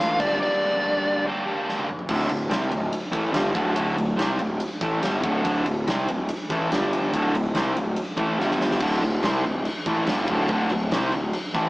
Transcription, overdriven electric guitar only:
Already playing: D2 A2 D3 A3 F4
0.20 G2 D3 G3 A#3 D4 G4
1.25 G2 D3 G3 A#3 D4 G4
1.46 G2 D3 G3 A#3 D4 G4
2.09 D2 A2 D3
2.28 D2 A2
2.49 C3 G3 C4
2.71 D2 A2
3.11 A2 E3 A3
3.32 G2 D3 G3
3.54 D2 A2 D3
3.75 D2 A2 D3
3.98 D2 A2
4.17 C3 G3 C4
4.40 D2 A2
4.82 A2 E3 A3
5.01 G2 D3 G3
5.22 D2 A2 D3
5.44 D2 A2 D3
5.66 D2 A2
5.87 C3 G3 C4
6.09 D2 A2
6.50 A2 E3 A3
6.71 G2 D3 G3
7.14 D2 A2 D3
7.34 D2 A2
7.55 C3 G3 C4
7.75 D2 A2
8.17 A2 E3 A3
8.38 G2 D3 G3
8.81 D2 A2 D3
9.03 D2 A2
9.23 C3 G3 C4
9.45 D2 A2
9.87 A2 E3 A3
10.09 G2 D3 G3
10.30 D2 A2 D3
10.51 D2 A2 D3
10.72 D2 A2
10.92 C3 G3 C4
11.13 D2 A2
11.54 A2 E3 A3

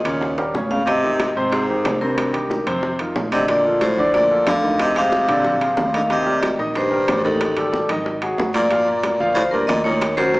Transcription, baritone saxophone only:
0.04 A#2
0.69 C#3
0.85 C3
1.51 G#2
2.01 G2
3.32 C3
3.48 A#2
3.81 A2
4.15 A#2
4.48 D3
4.81 C3
4.98 C3
5.95 D3
6.11 C3
6.76 G2
7.24 D#2
8.54 A#2
9.34 A2
9.52 G2
9.67 A#2
9.84 A#2
10.17 F#2

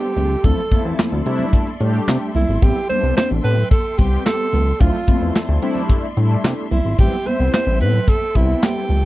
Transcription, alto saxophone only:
Already playing: G4
0.45 A4
2.35 E4
2.63 G4
2.89 C5
3.17 C5
3.44 B4
3.71 A4
3.98 G4
4.25 A4
4.80 F4
6.72 E4
6.99 G4
7.26 C5
7.54 C5
7.81 B4
8.08 A4
8.36 E4
8.63 G4

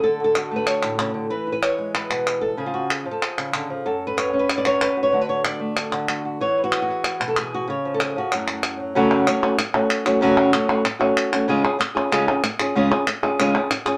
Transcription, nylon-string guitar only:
0.03 D3 A4
0.20 F#4
0.24 A4
0.36 F#4
0.51 A3
0.56 B4
0.67 C#5
0.83 A2
0.99 C#3
1.14 D3
1.30 E3 B4
1.47 E4
1.52 B4
1.62 C#5
1.78 G#3
1.95 B4
2.10 B2
2.41 A4
2.57 C#3 F3 G#4
2.66 F4
2.74 F#4
2.91 G#4
3.06 F3
3.11 A4
3.23 G#4
3.38 C#3
3.54 D3
3.70 F3
3.86 F#2 A4
4.07 B4
4.17 C#5
4.33 C#4
4.39 B4
4.50 C#5
4.58 D5
4.65 F#2 C#5
4.82 B4
4.97 F#4
5.03 C#5
5.12 D3 A3 D4 F#4
5.21 B4
5.29 C#5
5.45 D5
5.60 A3
5.77 D4
5.93 D3
6.09 F#4
6.25 F#4
6.41 E3 C#5
6.58 B4
6.64 F#4
6.74 G#4
6.82 F#4
6.89 E4 G#4
7.05 E4
7.20 B2
7.28 A4
7.38 G#4
7.54 F#4
7.68 C#3 C#5
7.85 F3
7.94 A4
8.02 G#4
8.16 F3 F#4
8.32 F#2 F#3 A3 E4
8.49 A3
8.80 F#3
8.95 F#2 C#3 F#3 A3 C#4 F#4
9.27 F#3 A3 C#4 F#4
9.42 F#3 A3 C#4 F#4
9.58 muted nylon-string guitar stroke
9.74 F#3 A3 C#4 F#4
10.06 F#3 A3 C#4 F#4
10.21 F#2 C#3 F#3 A3 C#4 F#4
10.53 F#3 A3 C#4 F#4
10.69 F#3 A3 C#4 F#4
10.85 muted nylon-string guitar stroke
10.99 F#3 A3 C#4 F#4
11.32 F#3 A3 C#4 F#4
11.48 C#3 G#3 C#4 F4 G#4
11.64 C#4 G#4
11.79 muted nylon-string guitar stroke
11.95 C#4 F4 G#4
12.12 C#3 G#3 C#4 F4 G#4
12.29 C#4 F4
12.43 muted nylon-string guitar stroke
12.60 C#4 F4 G#4
12.75 C#3 G#3 C#4 F4 G#4
12.91 C#4 F4 G#4
13.07 muted nylon-string guitar stroke
13.23 C#4 F4 G#4
13.39 C#3 G#3 C#4 F4 G#4
13.55 C#4 F4 G#4
13.71 muted nylon-string guitar stroke
13.86 C#4 F4 G#4

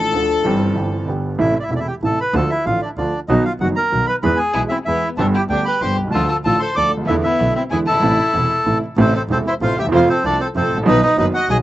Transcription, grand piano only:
Already playing: A1 A2 F3 A3 D4 A4
0.12 D2 D3 F3 A3 D4 A4
0.43 G1 G2 E3 G3 C4 G4
0.74 G1 G2 E3 G3 C4
0.78 G4
1.05 G1 G2 D3 G3 B3
1.10 G4
1.38 A1 A2 C3 E3 A3 E4
1.71 E1 E2 C3 E3 A3 E4
2.03 A1 A2 C3 E3 A3 E4
2.34 D2 D3 F3 A3 F4
2.66 A1 A2 D3 F3 A3 F4
2.98 D2 D3 F3 A3 F4
3.29 B1 B2 D#3 F#3 B3 F#4
3.61 F#1 F#2 D#3 F#3 B3 F#4
3.92 B1 B2 D#3 F#3 B3 F#4
4.23 E2 E3 G#3 B3 G#4
4.55 B1 B2 E3 G#3 B3 G#4
4.87 E2 E3 G#3 B3 G#4
5.18 G1 G2 D3 G3 B3 G4
5.50 D2 D3 G3 B3 G4
5.82 G1 G2 D3 G3 B3 G4
6.03 B1
6.07 C2 C#2
6.14 D2 D3 F3 A3 F4
6.46 A1 A2 D3 F3 A3 F4
6.77 D2 D3 F3 A3 F4
6.97 C#2
7.01 D2
7.06 D#2 E2 D3 E3 A3 B3
7.10 E4
7.40 B1 B2 D3 A3 B3 E4
7.72 E2 D3 E3 G#3 B3 E4
7.91 F#1 G1
8.00 G#1 A1 A2 C3 E3 A3 E4
8.34 E1 E2 C3 E3 A3 E4
8.66 A1 A2 C3 E3 A3 E4
8.98 A1 A2 C3 E3 A3 E4
9.30 E1 E2 C3 E3 A3 E4
9.61 A1 A2 C3 E3 A3 E4
9.81 D2 D#2
9.88 E2 F2 C3 F3 A3 F4
10.24 C2 C3 F3 A3 F4
10.55 F2 C3 F3 A3 F4
10.74 G#1 A1
10.83 A#1 B1 B2 D#3 F#3 B3 F#4
11.17 F#1 F#2 D#3 F#3 B3 F#4
11.49 B1 B2 D#3 F#3 B3 F#4

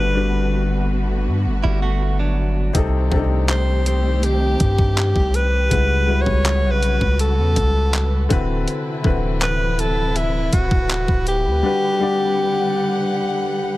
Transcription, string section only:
Already playing: D3 A3 B3 F#4
2.75 D#3 A3 C4 G4
5.71 C#3 G3 F#4 B4
8.30 C3 E3 E4
11.64 D3 G3 F#5

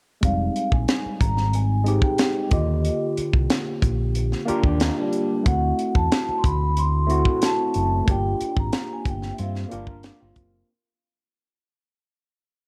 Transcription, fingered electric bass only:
0.23 F1
0.72 A#1
1.06 muted fingered electric bass stroke
1.21 G#1
2.52 D#2
3.18 muted fingered electric bass stroke
3.34 C2
3.83 A#1
4.49 muted fingered electric bass stroke
4.64 D#2
5.46 D2
5.95 E2
6.29 muted fingered electric bass stroke
6.44 D2
7.76 F#1
8.08 G1
8.41 muted fingered electric bass stroke
8.57 G#1
9.06 G1
9.39 G2
9.73 G1
10.22 G1
10.37 F#1

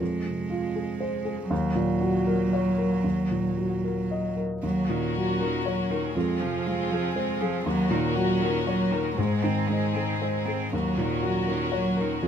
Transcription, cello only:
0.00 G#3
1.51 F#3
4.64 F#3
4.89 D#3
5.15 F#3
5.40 D#3
5.66 F#3
5.90 D#3
6.16 G#3
6.41 F3
6.66 G#3
6.90 F3
7.16 G#3
7.41 F3
7.65 F#3
7.91 D#3
8.15 F#3
8.41 D#3
8.66 F#3
8.91 D#3
9.16 G#3
9.44 C4
9.69 G#3
9.95 C4
10.20 G#3
10.46 C4
10.74 F#3
11.00 D#3
11.25 F#3
11.49 D#3
11.75 F#3
12.01 D#3

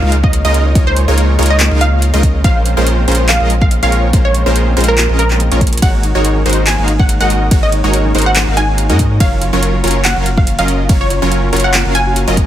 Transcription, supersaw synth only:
0.02 G#3 D#4 F4 A#4 F5
0.45 G#3 D#4 F4 A#4 D#5
0.75 G#3 D#4 F4 A#4 C#5
1.08 G#3 D#4 F4 A#4 C#5
1.39 G#3 D#4 F4 A#4 C#5
1.71 G#3 D#4 F4 A#4 F5
2.14 G#3 D#4 F4 A#4 D#5
2.44 G#3 C#4 F4 A#4 C5
2.77 G#3 C#4 F4 A#4 C5
3.08 G#3 C#4 F4 A#4 C5
3.40 G#3 C#4 F4 A#4 D#5
3.83 G#3 C#4 F4 A#4 C#5
4.13 G#3 C#4 F4 A#4 C5
4.46 G#3 C#4 F4 A#4 C5
4.77 G#3 C#4 F4 A#4 C5
5.09 G#3 C#4 F4 A#4 D#5
5.52 G#3 C#4 F4 A#4 C#5
5.82 G#3 D#4 F#4 A#4 C#5
6.15 G#3 D#4 F#4 A#4 C#5
6.46 G#3 D#4 F#4 A#4 C5
6.78 G#3 D#4 F#4 A#4 F5
7.21 G#3 D#4 F#4 A#4 D#5
7.51 G#3 D#4 F#4 A#4 C#5
7.84 G#3 D#4 F#4 A#4 C#5
8.15 G#3 D#4 F#4 A#4 C5
8.47 G#3 D#4 F#4 A#4 F5
8.90 G#3 D#4 F#4 A#4 D#5
9.20 F#3 C#4 F4 A#4 C#5
9.53 F#3 C#4 F4 A#4 C#5
9.84 F#3 C#4 F4 A#4 C#5
10.16 F#3 C#4 F4 A#4 F5
10.59 F#3 C#4 F4 A#4 D#5
10.89 F#3 C#4 F4 A#4 C#5
11.22 F#3 C#4 F4 A#4 C#5
11.53 F#3 C#4 F4 A#4 C#5
11.85 F#3 C#4 F4 A#4 F5
12.28 F#3 C#4 F4 A#4 D#5

